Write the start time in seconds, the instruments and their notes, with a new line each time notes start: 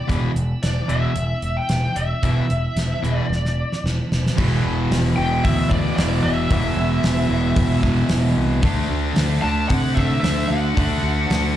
Already playing: tonewheel organ E3 B3 E4
0.09 fingered electric bass E1, distorted electric guitar E2 B2 E3, kick, closed hi-hat
0.36 fingered electric bass E1, closed hi-hat
0.63 fingered electric bass E1, lead electric guitar D5, snare, closed hi-hat
0.89 fingered electric bass E1, distorted electric guitar E2 B2 E3, lead electric guitar E5, closed hi-hat
1.16 fingered electric bass E1, closed hi-hat
1.42 fingered electric bass E1, closed hi-hat
1.57 lead electric guitar G5
1.69 fingered electric bass E1, snare, closed hi-hat
1.96 fingered electric bass E1, lead electric guitar E5, closed hi-hat
2.22 fingered electric bass E1, distorted electric guitar E2 B2 E3, kick, closed hi-hat
2.50 fingered electric bass E1, closed hi-hat
2.76 fingered electric bass E1, snare, closed hi-hat
3.03 fingered electric bass E1, distorted electric guitar E2 B2 E3, closed hi-hat
3.16 lead electric guitar D5
3.30 fingered electric bass E1, snare
3.45 snare
3.72 snare
3.84 fingered electric bass E1, snare
4.12 fingered electric bass E1, snare
4.26 snare
4.36 fingered electric bass E1, distorted electric guitar E2 B2 E3, kick, crash
4.40 tonewheel organ E3 B3 F#4
4.65 fingered electric bass E1
4.91 fingered electric bass E1, snare, open hi-hat
5.16 fingered electric bass E1, distorted electric guitar E2 B2 E3, lead electric guitar G5
5.43 fingered electric bass D2, lead electric guitar E5, kick, open hi-hat
5.69 distorted electric guitar E2 B2 E3, lead electric guitar D5, kick
5.96 fingered electric bass E1, distorted electric guitar E2 B2 E3, lead electric guitar D5, snare, open hi-hat
6.23 fingered electric bass E1, lead electric guitar E5
6.49 fingered electric bass E1, distorted electric guitar E2 B2 E3, tonewheel organ A3, kick, open hi-hat
6.77 fingered electric bass E1
7.03 fingered electric bass E1, snare, open hi-hat
7.29 fingered electric bass E1, distorted electric guitar E2 B2 E3
7.56 fingered electric bass E1, kick, open hi-hat
7.81 distorted electric guitar B2 E3, kick, snare
7.85 distorted electric guitar E2
8.09 fingered electric bass E1, distorted electric guitar E2 B2 E3, snare, open hi-hat
8.37 fingered electric bass C2
8.61 fingered electric bass D2, distorted electric guitar D3 A3, tonewheel organ D4 A4 E5, kick, open hi-hat
8.66 distorted electric guitar D4
8.90 fingered electric bass D2
9.16 fingered electric bass D2, snare, open hi-hat
9.42 fingered electric bass D2, distorted electric guitar A3 D4, lead electric guitar A5
9.47 distorted electric guitar D3
9.68 fingered electric bass C3, lead electric guitar F#5, kick, open hi-hat
9.95 distorted electric guitar A3 D4, lead electric guitar E5, kick, snare
10.00 distorted electric guitar D3
10.21 fingered electric bass D2, distorted electric guitar D3, lead electric guitar E5, snare, open hi-hat
10.25 distorted electric guitar A3 D4
10.48 fingered electric bass D2, lead electric guitar F#5
10.77 fingered electric bass D2, distorted electric guitar D3 A3 D4, kick, open hi-hat
11.03 fingered electric bass D2
11.30 fingered electric bass D2, snare, open hi-hat